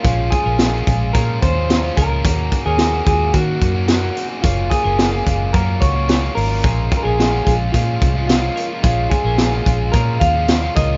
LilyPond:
<<
  \new Staff \with { instrumentName = "Clean electric guitar" } { \time 4/4 \key bes \minor \tempo 4 = 109 f'8 aes'4. bes'8 c''4 bes'8~ | bes'8. aes'8. aes'8 ges'4 ges'8. r16 | f'8 aes'4. bes'8 des''4 bes'8~ | bes'8~ bes'32 bes'32 aes'8. aes'8 f'4 f'8. r16 |
f'8 aes'4. bes'8 f''4 ees''8 | }
  \new Staff \with { instrumentName = "Clean electric guitar" } { \time 4/4 \key bes \minor <des' aes'>8. <des' bes'>16 <bes ges'>8 <aes f'>8 <des' aes'>4 <f' c''>8 <des' bes'>8 | <des' aes'>8. <des' bes'>16 <bes ges'>8 <aes f'>8 <bes ges'>4 <des' bes'>8 <c' aes'>8 | <des' aes'>8. <des' bes'>16 <bes ges'>8 <aes f'>8 <bes ges'>4 <des' aes'>8 <des' bes'>8 | <des' aes'>8. <des' bes'>16 <bes ges'>8 <aes f'>8 <des' aes'>4 <f' c''>8 <des' bes'>8 |
<des' aes'>8. <des' bes'>16 <bes ges'>8 <aes f'>8 <des' aes'>4 <f' c''>8 <des' bes'>8 | }
  \new Staff \with { instrumentName = "Overdriven electric guitar" } { \time 4/4 \key bes \minor <f aes des' f'>8. <aes des' f'>8 <aes des' f'>8. <bes, f aes des' f'>8. <bes, f aes des' f'>8 <bes, f aes des' f'>8. | <ees bes des' ges'>8. <bes des' ges'>8 <bes des' ges'>8. <ees bes des' ges'>8. <ees bes des' ges'>8 <ees bes des' ges'>8. | <ges bes des' f'>8. <bes des' f'>8 <bes des' f'>8. <ges bes des' f'>8. <ges bes des' f'>8 <ges bes des' f'>8. | <f aes des' f'>8. <aes des' f'>8 <aes des' f'>8. <bes, f aes des' f'>8. <bes, f aes des' f'>8 <bes, f aes des' f'>8. |
<f aes des' f'>8. <aes des' f'>8 <aes des' f'>8. <bes, f aes des' f'>8. <bes, f aes des' f'>8 <bes, f aes des' f'>8. | }
  \new Staff \with { instrumentName = "Fingered electric bass" } { \clef bass \time 4/4 \key bes \minor bes,,8 r16 bes,,8. bes,,8 bes,8 ees,4 des,8 | ees,8 r16 ees,8. ees,8 ees8 ges,4 r8 | ges,,8 r16 ges,,8. ges,,8 ges,8 des,4 aes,,8 | bes,,8 r16 bes,,8. bes,,8 bes,8 c,4 r8 |
bes,,8 r16 bes,,8. bes,,8 bes,8 ees,4 des,8 | }
  \new DrumStaff \with { instrumentName = "Drums" } \drummode { \time 4/4 <hh bd>8 <hh bd>8 <hh sn>8 <hh bd>8 <hh bd>8 <hh bd>8 <hh sn>8 <hh bd>8 | <hh bd>8 <hh bd>8 <hh sn>8 <hh bd>8 <hh bd>8 <hh bd>8 <hh sn>8 hh8 | <hh bd>8 <hh bd>8 <hh sn>8 <hh bd>8 <hh bd>8 <hh bd>8 <hh sn>8 hho8 | <hh bd>8 <hh bd>8 <hh sn>8 <hh bd>8 <hh bd>8 <hh bd>8 <hh sn>8 hh8 |
<hh bd>8 <hh bd>8 <hh sn>8 <hh bd>8 <hh bd>8 <hh bd>8 <hh sn>8 <hh bd>8 | }
>>